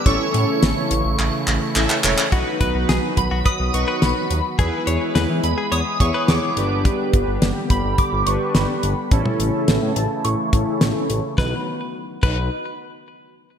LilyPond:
<<
  \new Staff \with { instrumentName = "Synth bell" } { \time 4/4 \key b \mixolydian \tempo 4 = 106 cis'''2.~ cis'''8 r8 | r4. b''8 dis'''8 cis'''8 b''8. r16 | r4. b''8 dis'''8 cis'''8 d'''8. r16 | r4. b''8 d'''8 cis'''8 b''8. r16 |
r4. a''8 cis'''4 cis'''8. r16 | b''8 r4 b''8 r2 | }
  \new Staff \with { instrumentName = "Clean electric guitar" } { \time 4/4 \key b \mixolydian r1 | fis'8 b'8 gis'16 r8 fis'16 b'16 r8 b'16 r4 | gis'8 cis''8 b'16 r8 gis'16 cis''16 r8 b'8 r8. | r1 |
r1 | b'8 r4 b'8 r2 | }
  \new Staff \with { instrumentName = "Analog polysynth" } { \time 4/4 \key b \mixolydian <cis' e' a' cis''>4. r4. <cis' e' a' e''>8 <cis' e' a' cis''>8 | <dis' fis' b'>4. r4 <dis' fis' b'>4 r8 | <e' gis' b'>4. r4 <e' gis' cis''>4 <d' g' b'>8~ | <d' g' b'>4 r4. <d' g' b'>4 r8 |
<cis' e' a'>4. r4 <cis' e' a'>4 r8 | <dis' fis' b'>8 r4 <dis' fis' b'>8 r2 | }
  \new Staff \with { instrumentName = "Analog synth pad" } { \clef bass \time 4/4 \key b \mixolydian << { <cis e e'>1 | <dis fis fis'>1 | <e gis gis'>2.~ <e gis gis'>8 <d g g'>8~ | <d g g'>1 |
<cis e e'>1 | <dis fis b fis'>8 r2. r8 | } \\ { a1 | b1 | b1~ | b1 |
a1 | r1 | } >> }
  \new Staff \with { instrumentName = "Analog synth bass" } { \clef bass \time 4/4 \key b \mixolydian a,,16 r16 a,16 r16 a,,16 r16 a,,16 a,,16 a,,16 r16 a,,16 r16 a,,16 r16 e,,16 r16 | b,,16 r16 b,,16 b,,16 b,,16 r16 b,,16 b,,16 r16 b,,16 b,,16 r16 b,,16 r16 dis,16 r16 | e,16 r16 e,16 r16 e,16 e16 e,16 r16 e,16 r16 e,16 r16 e,16 r16 g,,8~ | g,,16 r16 g,,16 g,,16 g,,16 r16 g,,16 g,,16 r16 g,,16 g,,16 r16 g,,16 r16 g,,16 r16 |
a,,16 r16 a,,16 r16 a,,16 a,16 a,,16 r16 a,,16 r16 a,,16 r16 a,,16 r16 a,,16 r16 | b,,16 r4 r16 b,,8 r2 | }
  \new DrumStaff \with { instrumentName = "Drums" } \drummode { \time 4/4 <hh bd>8 hh8 <hh sn>8 hh8 hc8 hc8 hc16 hc16 hc16 hc16 | <hh bd>8 <hh bd>8 <hh sn>8 <hh bd>8 <hh bd>8 hh8 <hh sn>8 hh8 | <hh bd>8 hh8 <hh sn>8 hh8 hh8 <hh bd>8 <hh sn>8 hh8 | <hh bd>8 <hh bd>8 <hh sn>8 <hh bd>8 <hh bd>8 hh8 <hh sn>8 hh8 |
<hh bd>16 toml16 hh8 <hh sn>8 hh8 hh8 <hh bd>8 <hh sn>8 hh8 | <bd sn>4 r8 <cymc bd>8 r4 r4 | }
>>